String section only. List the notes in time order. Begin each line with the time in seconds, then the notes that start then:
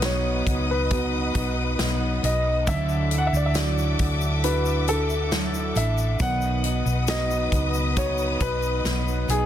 Already playing: B4 D#5 F#5 D#6
2.68 A4 E5 D6
6.21 B4 D#5 D#6